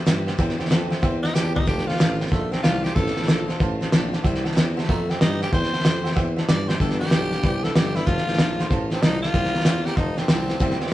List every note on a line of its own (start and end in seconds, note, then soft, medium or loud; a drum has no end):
0.06 0.32 G2 medium
0.06 0.27 C3 medium
0.06 0.27 E3 medium
0.06 0.28 A#3 medium
0.06 0.27 C4 medium
0.06 0.25 G4 medium
0.06 0.19 C5 medium
0.06 0.19 E5 medium
0.06 0.20 G5 loud
0.06 snare loud
0.06 hi-hat pedal medium
0.26 0.38 A#3 medium
0.26 0.38 C4 medium
0.26 0.38 G4 medium
0.26 0.34 C5 medium
0.26 0.34 E5 medium
0.26 0.35 G5 medium
0.26 snare soft
0.38 0.55 E2 medium
0.38 0.59 C3 medium
0.38 0.59 E3 medium
0.38 0.60 A#3 medium
0.38 0.59 C4 medium
0.38 0.57 G4 medium
0.38 0.51 C5 medium
0.38 0.51 E5 loud
0.38 0.52 G5 loud
0.38 kick loud
0.38 snare soft
0.49 snare soft
0.58 0.69 E2 medium
0.58 0.69 A#3 soft
0.58 0.70 C4 medium
0.58 0.70 G4 medium
0.58 0.66 C5 medium
0.58 0.66 E5 medium
0.58 0.67 G5 medium
0.58 snare soft
0.65 0.91 C3 medium
0.65 snare soft
0.70 0.97 F2 medium
0.70 0.91 E3 medium
0.70 0.91 A#3 medium
0.70 0.91 C4 medium
0.70 0.89 G4 medium
0.70 0.83 C5 medium
0.70 0.83 E5 medium
0.70 0.84 A5 medium
0.70 snare loud
0.70 hi-hat pedal medium
0.90 1.02 A#3 medium
0.90 1.03 C4 medium
0.90 1.03 G4 medium
0.90 0.98 C5 medium
0.90 0.98 E5 medium
0.90 0.99 G5 loud
0.90 snare soft
1.02 1.28 E2 medium
1.02 1.23 E3 medium
1.02 1.24 A#3 medium
1.02 1.23 C4 medium
1.02 1.21 G4 medium
1.02 1.15 C5 loud
1.02 1.15 E5 loud
1.02 1.16 G5 loud
1.02 kick loud
1.02 snare soft
1.22 1.34 A#3 soft
1.22 1.35 C4 soft
1.22 1.36 D#4 medium
1.22 1.35 G4 medium
1.22 1.30 C5 medium
1.22 1.31 E5 medium
1.22 1.31 G5 medium
1.22 snare soft
1.34 1.61 E2 medium
1.34 1.55 C3 medium
1.34 1.56 E3 medium
1.34 1.56 A#3 medium
1.34 1.55 C4 medium
1.34 1.55 G4 medium
1.34 1.53 G4 medium
1.34 1.47 C5 medium
1.34 1.48 E5 medium
1.34 1.48 A5 medium
1.34 snare medium
1.34 hi-hat pedal medium
1.54 1.67 A#3 soft
1.54 1.67 C4 soft
1.54 1.67 D#4 medium
1.54 1.67 G4 medium
1.54 1.63 C5 medium
1.54 1.63 E5 medium
1.54 1.63 A#5 medium
1.54 floor tom medium
1.66 1.93 F1 loud
1.66 1.88 F2 medium
1.66 1.88 C3 medium
1.66 1.88 D#3 medium
1.66 1.88 A3 medium
1.66 1.87 C4 medium
1.66 1.86 F4 medium
1.66 1.88 G4 medium
1.66 1.80 C5 medium
1.66 1.80 F5 medium
1.66 1.80 A5 loud
1.66 kick loud
1.66 snare soft
1.78 snare soft
1.87 1.99 D#3 soft
1.87 1.99 A3 soft
1.87 2.00 C4 medium
1.87 2.19 F4 loud
1.87 1.99 F4 soft
1.87 1.94 C5 medium
1.87 1.95 F5 medium
1.87 1.95 G5 medium
1.87 snare soft
1.94 snare soft
1.99 2.25 A1 medium
1.99 2.20 F2 medium
1.99 2.20 C3 medium
1.99 2.20 D#3 medium
1.99 2.21 A3 medium
1.99 2.19 C4 medium
1.99 2.18 F4 medium
1.99 2.12 C5 medium
1.99 2.13 A5 medium
1.99 snare loud
1.99 hi-hat pedal medium
2.19 2.29 D#3 soft
2.19 2.31 A3 medium
2.19 2.32 C4 medium
2.19 2.31 F4 medium
2.19 2.27 C5 medium
2.19 2.27 F5 medium
2.19 2.28 G5 medium
2.19 snare soft
2.26 snare soft
2.30 2.57 A#1 medium
2.30 2.52 D#3 medium
2.30 2.54 A3 medium
2.30 2.53 A3 medium
2.30 2.52 C4 medium
2.30 2.50 F4 medium
2.30 2.44 C5 loud
2.30 2.44 F5 medium
2.30 2.44 A5 loud
2.30 kick loud
2.30 snare soft
2.51 2.63 D#3 soft
2.51 2.63 A3 soft
2.51 2.62 C4 medium
2.51 2.64 C4 medium
2.51 2.64 F4 medium
2.51 2.59 C5 medium
2.51 2.59 F5 medium
2.51 2.60 A5 medium
2.51 snare soft
2.63 2.90 C2 medium
2.63 2.84 F2 medium
2.63 2.85 C3 medium
2.63 2.85 D#3 medium
2.63 2.85 A3 medium
2.63 2.83 C4 medium
2.63 2.85 F4 loud
2.63 2.82 F4 medium
2.63 2.76 C5 medium
2.63 snare medium
2.63 hi-hat pedal medium
2.84 2.95 D#3 soft
2.84 2.96 A3 soft
2.84 2.96 C4 medium
2.84 2.96 F4 medium
2.84 2.97 G4 medium
2.84 2.91 C5 medium
2.84 2.92 F5 medium
2.84 2.92 C6 medium
2.84 snare soft
2.95 3.12 A1 loud
2.95 3.16 F2 medium
2.95 3.17 C3 medium
2.95 3.17 D#3 medium
2.95 3.17 A3 medium
2.95 3.16 C4 medium
2.95 3.15 F4 medium
2.95 3.58 A4 loud
2.95 3.08 C5 medium
2.95 3.09 F5 medium
2.95 3.09 A5 medium
2.95 kick loud
2.95 snare soft
3.07 snare soft
3.16 3.26 A1 medium
3.16 3.27 D#3 soft
3.16 3.28 A3 medium
3.16 3.28 C4 soft
3.16 3.28 F4 medium
3.16 3.23 C5 medium
3.16 3.23 F5 medium
3.16 3.24 A5 medium
3.16 snare soft
3.23 snare soft
3.27 3.54 A#1 medium
3.27 3.48 F2 medium
3.27 3.49 C3 medium
3.27 3.49 D#3 medium
3.27 3.49 A3 medium
3.27 3.48 C4 medium
3.27 3.47 F4 medium
3.27 3.40 C5 medium
3.27 3.41 F5 medium
3.27 snare loud
3.27 hi-hat pedal medium
3.48 3.59 D#3 medium
3.48 3.60 A3 medium
3.48 3.61 C4 medium
3.48 3.60 F4 medium
3.48 3.55 C5 loud
3.48 3.56 F5 medium
3.48 3.56 A5 loud
3.48 snare soft
3.59 3.86 A1 medium
3.59 3.81 D#3 medium
3.59 3.81 A3 medium
3.59 3.81 C4 medium
3.59 3.79 F4 medium
3.59 3.72 C5 loud
3.59 3.73 F5 loud
3.59 3.73 A5 loud
3.59 kick loud
3.59 snare soft
3.80 3.92 A3 medium
3.80 3.93 C4 medium
3.80 3.92 F4 medium
3.80 3.87 C5 medium
3.80 3.88 F5 medium
3.80 3.88 A5 medium
3.80 snare soft
3.84 3.92 D#3 soft
3.91 4.18 A#1 loud
3.91 4.13 F2 medium
3.91 4.13 C3 medium
3.91 4.13 D#3 medium
3.91 4.14 A3 medium
3.91 4.13 C4 medium
3.91 4.12 F4 medium
3.91 4.04 C5 medium
3.91 4.05 F5 medium
3.91 4.05 A5 loud
3.91 snare loud
3.91 hi-hat pedal medium
4.12 4.26 A3 medium
4.12 4.25 C4 medium
4.12 4.24 F4 medium
4.12 4.19 C5 medium
4.12 4.20 F5 medium
4.12 4.20 A5 loud
4.12 snare soft
4.16 4.25 D#3 soft
4.23 4.50 C2 loud
4.23 4.45 C3 medium
4.23 4.45 E3 loud
4.23 4.46 A#3 medium
4.23 4.46 C4 loud
4.23 4.36 C5 loud
4.23 4.36 E5 loud
4.23 4.37 G5 loud
4.23 kick loud
4.23 snare soft
4.27 4.44 G4 medium
4.35 snare soft
4.44 4.57 C4 medium
4.44 4.57 G4 medium
4.44 4.51 C5 medium
4.44 4.52 E5 medium
4.44 4.52 A5 loud
4.44 snare soft
4.48 4.57 A#3 soft
4.48 snare soft
4.55 4.82 E2 medium
4.55 4.77 C3 medium
4.55 4.77 E3 medium
4.55 4.78 A#3 medium
4.55 4.78 C4 medium
4.55 4.76 G4 medium
4.55 4.68 C5 loud
4.55 4.69 E5 medium
4.55 4.69 G5 loud
4.55 snare loud
4.55 hi-hat pedal medium
4.76 4.88 A#3 medium
4.76 4.89 C4 medium
4.76 4.88 G4 medium
4.76 4.83 C5 medium
4.76 4.84 E5 medium
4.76 4.84 A5 loud
4.76 snare soft
4.84 5.00 C5 loud
4.84 snare soft
4.88 5.14 F2 loud
4.88 5.09 E3 medium
4.88 5.12 A3 loud
4.88 5.09 A#3 medium
4.88 5.10 C4 medium
4.88 5.09 G4 medium
4.88 5.01 E5 medium
4.88 5.01 A#5 loud
4.88 kick loud
4.88 snare soft
5.09 5.21 A#3 soft
5.09 5.21 C4 medium
5.09 5.22 C4 soft
5.09 5.21 G4 medium
5.09 5.16 C5 medium
5.09 5.16 E5 medium
5.09 5.17 G5 medium
5.09 snare soft
5.19 5.46 G2 loud
5.19 5.41 C3 medium
5.19 5.41 E3 medium
5.19 5.42 A#3 medium
5.19 5.41 C4 medium
5.19 5.41 D#4 medium
5.19 5.32 C5 medium
5.19 5.33 E5 medium
5.19 5.33 G5 medium
5.19 snare loud
5.19 hi-hat pedal medium
5.24 5.40 G4 medium
5.41 5.53 A#3 soft
5.41 5.53 C4 medium
5.41 5.52 G4 medium
5.41 5.53 G4 medium
5.41 5.48 C5 medium
5.41 5.48 E5 medium
5.41 5.48 G5 medium
5.41 snare soft
5.51 5.69 E2 loud
5.51 5.73 C3 medium
5.51 5.74 E3 medium
5.51 5.74 A#3 medium
5.51 5.73 C4 medium
5.51 5.72 G4 medium
5.51 5.64 C5 medium
5.51 6.15 C5 loud
5.51 5.65 E5 medium
5.51 5.65 G5 medium
5.51 kick loud
5.51 snare soft
5.63 snare soft
5.72 5.85 C4 medium
5.72 5.85 G4 medium
5.72 5.79 C5 medium
5.72 5.80 E5 medium
5.72 5.80 A5 medium
5.72 snare soft
5.76 5.85 A#3 soft
5.76 snare soft
5.83 6.10 F2 medium
5.83 6.05 C3 medium
5.83 6.05 E3 medium
5.83 6.06 A#3 medium
5.83 6.06 C4 medium
5.83 5.96 C5 medium
5.83 5.96 E5 medium
5.83 5.97 G5 medium
5.83 snare loud
5.83 hi-hat pedal medium
5.87 6.04 G4 medium
6.03 6.17 C4 medium
6.03 6.16 G4 medium
6.03 6.11 C5 medium
6.03 6.11 E5 medium
6.03 6.12 G5 loud
6.03 snare soft
6.08 6.16 A#3 soft
6.08 snare soft
6.15 6.42 E2 medium
6.15 6.37 E3 medium
6.15 6.37 A#3 medium
6.15 6.37 C4 medium
6.15 6.28 C5 loud
6.15 6.28 E5 loud
6.15 6.29 G5 loud
6.15 kick loud
6.15 snare soft
6.20 6.35 G4 medium
6.36 6.48 C4 medium
6.36 6.48 G4 medium
6.36 6.43 C5 medium
6.36 6.43 E5 medium
6.36 6.44 A5 loud
6.36 snare soft
6.40 6.48 A#3 medium
6.48 6.74 G2 loud
6.48 6.69 C3 medium
6.48 6.69 E3 medium
6.48 6.69 A#3 medium
6.48 6.69 C4 medium
6.48 6.67 G4 medium
6.48 6.60 C5 medium
6.48 6.70 D5 loud
6.48 6.60 E5 medium
6.48 6.61 G5 medium
6.48 snare loud
6.48 hi-hat pedal medium
6.67 6.81 C4 medium
6.67 6.80 G4 medium
6.67 6.75 C5 medium
6.67 6.80 C5 medium
6.67 6.75 E5 medium
6.67 6.76 G5 medium
6.67 snare medium
6.72 6.82 A#3 soft
6.79 7.05 G1 loud
6.79 7.01 G2 medium
6.79 7.01 D3 medium
6.79 7.01 F3 medium
6.79 7.01 B3 medium
6.79 7.01 D4 medium
6.79 6.99 G4 medium
6.79 7.00 A4 medium
6.79 6.92 B4 medium
6.79 6.92 D5 medium
6.79 6.92 G5 loud
6.79 kick loud
6.79 snare soft
6.90 snare soft
6.99 7.12 B3 soft
6.99 7.13 D4 medium
6.99 7.65 G4 loud
6.99 7.12 G4 medium
6.99 7.07 B4 medium
6.99 7.07 D5 medium
6.99 7.08 G5 medium
6.99 snare soft
7.04 7.12 F3 soft
7.04 snare soft
7.11 7.37 B1 medium
7.11 7.32 G2 medium
7.11 7.33 D3 medium
7.11 7.33 F3 medium
7.11 7.33 B3 medium
7.11 7.32 D4 medium
7.11 7.31 G4 medium
7.11 7.24 B4 medium
7.11 7.24 D5 medium
7.11 7.24 G5 medium
7.11 snare loud
7.11 hi-hat pedal medium
7.32 7.42 F3 soft
7.32 7.43 B3 soft
7.32 7.44 D4 medium
7.32 7.43 G4 medium
7.32 7.39 B4 medium
7.32 7.39 D5 medium
7.32 7.40 F5 medium
7.32 snare soft
7.43 7.69 C2 loud
7.43 7.64 F3 medium
7.43 7.64 B3 medium
7.43 7.64 D4 medium
7.43 7.62 G4 medium
7.43 7.55 B4 loud
7.43 7.56 D5 loud
7.43 7.56 G5 loud
7.43 kick loud
7.43 snare soft
7.63 7.76 B3 soft
7.63 7.76 D4 soft
7.63 7.75 G4 medium
7.63 7.77 A4 medium
7.63 7.70 B4 medium
7.63 7.71 E5 medium
7.63 snare soft
7.67 7.75 F3 soft
7.74 8.01 G1 loud
7.74 7.96 G2 medium
7.74 7.96 D3 medium
7.74 7.96 F3 medium
7.74 7.96 B3 medium
7.74 7.95 D4 medium
7.74 7.97 G4 medium
7.74 7.94 G4 medium
7.74 7.87 B4 medium
7.74 7.88 D5 medium
7.74 7.88 E5 medium
7.74 snare loud
7.74 hi-hat pedal medium
7.95 8.07 F3 soft
7.95 8.08 B3 medium
7.95 8.08 D4 medium
7.95 8.08 E4 loud
7.95 8.07 G4 medium
7.95 8.02 B4 medium
7.95 8.03 D5 medium
7.95 8.03 G5 medium
7.95 snare soft
8.06 8.23 F1 loud
8.06 8.27 F2 medium
8.06 8.28 C3 medium
8.06 8.28 D#3 medium
8.06 8.28 A3 medium
8.06 8.27 D#4 medium
8.06 8.69 F4 loud
8.06 8.26 F4 medium
8.06 8.19 C5 medium
8.06 8.20 F5 medium
8.06 8.20 A5 loud
8.06 kick loud
8.06 snare soft
8.18 snare soft
8.27 8.37 A1 medium
8.27 8.39 D#3 soft
8.27 8.39 A3 medium
8.27 8.39 D#4 medium
8.27 8.39 F4 medium
8.27 8.34 C5 medium
8.27 8.35 A5 medium
8.27 snare soft
8.34 snare soft
8.38 8.64 A#1 medium
8.38 8.59 F2 medium
8.38 8.59 C3 medium
8.38 8.60 D#3 medium
8.38 8.60 A3 medium
8.38 8.59 D#4 medium
8.38 8.58 F4 medium
8.38 8.51 C5 medium
8.38 8.51 F5 medium
8.38 8.52 A5 medium
8.38 snare loud
8.38 hi-hat pedal medium
8.58 8.69 D#3 medium
8.58 8.70 A3 medium
8.58 8.71 D#4 medium
8.58 8.71 F4 medium
8.58 8.66 C5 medium
8.58 8.66 F5 medium
8.58 8.67 C6 loud
8.58 snare soft
8.70 8.96 A1 medium
8.70 8.91 D#3 medium
8.70 8.91 A3 medium
8.70 8.90 D#4 medium
8.70 8.89 F4 medium
8.70 8.82 C5 loud
8.70 8.83 F5 loud
8.70 8.83 A5 loud
8.70 kick loud
8.70 snare soft
8.90 9.02 D#3 soft
8.90 9.02 A3 soft
8.90 9.03 C4 loud
8.90 9.03 D#4 medium
8.90 9.02 F4 medium
8.90 8.98 C5 medium
8.90 8.98 F5 medium
8.90 8.99 A5 medium
8.90 snare soft
9.02 9.27 C2 loud
9.02 9.23 F2 medium
9.02 9.23 C3 medium
9.02 9.23 D#3 medium
9.02 9.23 A3 medium
9.02 9.22 D#4 loud
9.02 9.22 D#4 medium
9.02 9.20 F4 medium
9.02 9.14 C5 medium
9.02 9.15 F5 medium
9.02 9.15 A5 medium
9.02 snare loud
9.02 hi-hat pedal medium
9.22 9.34 D#3 soft
9.22 9.35 A3 soft
9.22 9.34 D#4 medium
9.22 9.34 F4 medium
9.22 9.87 F4 loud
9.22 9.29 C5 medium
9.22 9.30 F5 medium
9.22 9.30 A5 medium
9.22 snare soft
9.33 9.59 C2 medium
9.33 9.54 C3 medium
9.33 9.54 E3 medium
9.33 9.55 A#3 medium
9.33 9.54 C4 medium
9.33 9.52 G4 medium
9.33 9.46 C5 medium
9.33 9.46 E5 medium
9.33 9.47 G5 loud
9.33 kick loud
9.33 snare soft
9.44 snare soft
9.53 9.66 A#3 soft
9.53 9.66 C4 medium
9.53 9.65 G4 medium
9.53 9.61 C5 medium
9.53 9.61 E5 medium
9.53 9.62 A#5 medium
9.53 snare soft
9.60 snare soft
9.65 9.91 E2 medium
9.65 9.86 C3 medium
9.65 9.87 E3 medium
9.65 9.87 A#3 loud
9.65 9.86 C4 medium
9.65 9.84 G4 medium
9.65 9.78 C5 loud
9.65 9.78 E5 medium
9.65 9.78 G5 loud
9.65 snare loud
9.65 hi-hat pedal medium
9.85 9.96 A#3 soft
9.85 9.97 C4 medium
9.85 9.97 G4 medium
9.85 9.98 G4 loud
9.85 9.92 C5 medium
9.85 9.93 E5 medium
9.85 9.93 A#5 medium
9.85 snare soft
9.96 10.22 F1 medium
9.96 10.17 D#3 medium
9.96 10.17 A3 medium
9.96 10.17 C4 medium
9.96 10.19 D#4 medium
9.96 10.16 F4 medium
9.96 10.09 C5 loud
9.96 10.10 F5 loud
9.96 10.10 A5 loud
9.96 kick loud
9.96 snare soft
10.17 10.27 D#3 soft
10.17 10.28 A3 soft
10.17 10.79 C4 loud
10.17 10.29 C4 medium
10.17 10.29 F4 medium
10.17 10.25 C5 medium
10.17 10.25 F5 medium
10.17 10.25 A5 medium
10.17 snare soft
10.28 10.54 C2 medium
10.28 10.49 F2 medium
10.28 10.49 C3 medium
10.28 10.49 D#3 medium
10.28 10.49 A3 medium
10.28 10.49 C4 medium
10.28 10.47 F4 medium
10.28 10.41 C5 medium
10.28 10.42 F5 medium
10.28 10.42 A5 medium
10.28 snare loud
10.28 hi-hat pedal medium
10.48 10.60 D#3 soft
10.48 10.61 A3 soft
10.48 10.60 C4 medium
10.48 10.60 F4 soft
10.48 10.56 C5 medium
10.48 10.57 F5 medium
10.48 10.57 A5 medium
10.48 snare soft
10.60 10.77 C2 loud
10.60 10.81 C3 medium
10.60 10.81 E3 medium
10.60 10.81 A#3 medium
10.60 10.80 C4 medium
10.60 10.79 G4 medium
10.60 10.73 C5 loud
10.60 10.73 E5 medium
10.60 10.74 G5 loud
10.60 kick loud
10.60 snare soft
10.71 snare soft
10.80 10.90 E2 medium
10.80 10.91 A#3 medium
10.80 10.91 C4 medium
10.80 10.92 G4 medium
10.80 10.88 C5 medium
10.80 10.88 E5 medium
10.80 10.89 G5 medium
10.80 snare soft
10.87 snare soft